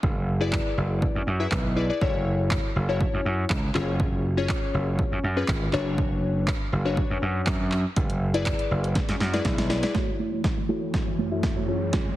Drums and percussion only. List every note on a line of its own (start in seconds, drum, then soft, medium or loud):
0.03 kick loud
0.53 kick loud
0.53 clap loud
1.02 kick loud
1.52 kick loud
1.52 clap loud
2.01 kick loud
2.51 kick loud
2.51 clap loud
3.01 kick loud
3.50 kick loud
3.50 clap loud
3.75 clap medium
4.00 kick loud
4.49 kick loud
4.49 clap loud
4.99 kick loud
5.48 kick loud
5.48 clap loud
5.73 clap medium
5.98 kick loud
6.48 kick loud
6.48 clap loud
6.97 kick loud
7.47 kick loud
7.47 clap loud
7.72 clap medium
7.96 kick loud
7.96 closed hi-hat medium
8.10 closed hi-hat medium
8.34 closed hi-hat medium
8.46 kick loud
8.46 clap loud
8.46 closed hi-hat medium
8.59 closed hi-hat medium
8.84 closed hi-hat soft
8.95 kick loud
8.95 snare medium
8.95 closed hi-hat medium
9.09 snare medium
9.09 closed hi-hat medium
9.20 snare medium
9.34 snare medium
9.34 closed hi-hat soft
9.45 kick loud
9.45 snare medium
9.45 closed hi-hat medium
9.58 snare medium
9.58 closed hi-hat medium
9.70 snare loud
9.83 snare medium
9.83 closed hi-hat medium
9.95 kick loud
9.95 snare medium
10.44 kick loud
10.44 snare medium
10.94 kick loud
10.94 snare medium
11.43 kick loud
11.43 snare medium
11.93 kick loud
11.93 snare medium
11.93 closed hi-hat medium